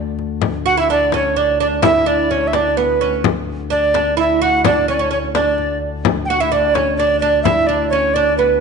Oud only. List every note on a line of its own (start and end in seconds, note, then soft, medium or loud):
0.66 0.77 F#4 medium
0.77 0.89 E4 medium
0.90 1.13 D4 medium
1.14 1.36 C#4 medium
1.36 1.59 D4 medium
1.60 1.82 D4 medium
1.82 2.06 E4 medium
2.06 2.30 D4 medium
2.31 2.52 C#4 medium
2.54 2.78 D4 medium
2.77 2.99 B3 medium
3.01 3.22 C#4 medium
3.70 3.93 D4 medium
3.94 4.17 D4 medium
4.17 4.41 E4 medium
4.42 4.65 F#4 medium
4.65 4.88 D4 medium
4.88 4.98 C#4 medium
4.99 5.10 C#4 medium
5.11 5.35 C#4 medium
5.35 5.78 D4 medium
6.30 6.40 F#4 medium
6.40 6.51 E4 medium
6.52 6.75 D4 medium
6.75 6.99 C#4 medium
7.00 7.21 D4 medium
7.22 7.45 D4 medium
7.45 7.68 E4 medium
7.69 7.92 D4 medium
7.93 8.14 C#4 medium
8.16 8.40 D4 medium
8.39 8.60 B3 medium